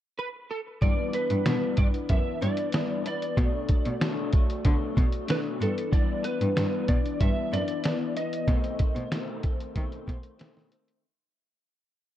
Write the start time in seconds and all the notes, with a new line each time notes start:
0.19 B4
0.51 A4
0.81 G2 E3 B3 D4 D5, kick, closed hi-hat
1.13 E3 B3 D4 B4, closed hi-hat
1.30 G2, closed hi-hat
1.46 G2 B2 E3 B3 D4, snare, closed hi-hat
1.77 G2 B3 D4 D5, kick, closed hi-hat
1.94 closed hi-hat
2.09 F#2 E3 B3 D4 E5, kick, closed hi-hat
2.41 G2 E3 B3 D4 D5, closed hi-hat
2.57 closed hi-hat
2.72 G2 E3 B3 D4, snare, closed hi-hat
3.04 E3 B3 D4 D5, closed hi-hat
3.22 closed hi-hat
3.36 B2 F#3 A3 D4, kick, closed hi-hat
3.69 F#3 A3 D4, kick, closed hi-hat
3.85 B2, closed hi-hat
4.00 B2 F#3 A3 D4, snare, closed hi-hat
4.32 F#3 A3 D4, kick, closed hi-hat
4.50 closed hi-hat
4.64 B2 D3 F#3 A3 D4, kick, closed hi-hat
4.96 B2 F#3 A3 D4, kick, closed hi-hat
5.12 closed hi-hat
5.28 B2 F#3 A3 D4 B4, snare, closed hi-hat
5.59 G2 E3 B3 D4 A4, closed hi-hat
5.78 closed hi-hat
5.91 G2 E3 B3 D4 D5, kick, closed hi-hat
6.23 E3 B3 D4 B4, closed hi-hat
6.41 G2, closed hi-hat
6.55 G2 E3 B3 D4, snare, closed hi-hat
6.87 B2 E3 B3 D4 D5, kick, closed hi-hat
7.06 closed hi-hat
7.20 G2 E3 B3 D4 E5, kick, closed hi-hat
7.52 F#2 E3 B3 D4 D5, closed hi-hat
7.68 closed hi-hat
7.84 E3 B3 D4, snare, closed hi-hat
8.17 E3 B3 D#5, closed hi-hat
8.33 closed hi-hat
8.47 B2 D#3 A3 C4, kick, closed hi-hat
8.64 closed hi-hat
8.79 D#3 A3 C4, kick, closed hi-hat
8.95 B2, closed hi-hat
9.11 B2 D#3 A3 C4, snare, closed hi-hat
9.43 D#3 A3 C4, kick, closed hi-hat
9.60 closed hi-hat
9.75 B2 D#3 A3 C4, kick, closed hi-hat
9.92 closed hi-hat
10.06 B2 D#3 A3 C4, kick, closed hi-hat
10.23 closed hi-hat
10.39 B2 D#3 A3 C4, snare, closed hi-hat
10.57 snare
10.70 D#3 A3 C4, closed hi-hat
10.88 closed hi-hat